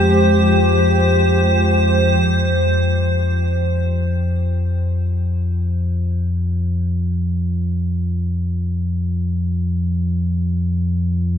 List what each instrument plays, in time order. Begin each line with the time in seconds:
Already playing: synth drone F2 F3, cello section F3 G#3 G4, ambient pad C5
2.24 synth drone F2 F3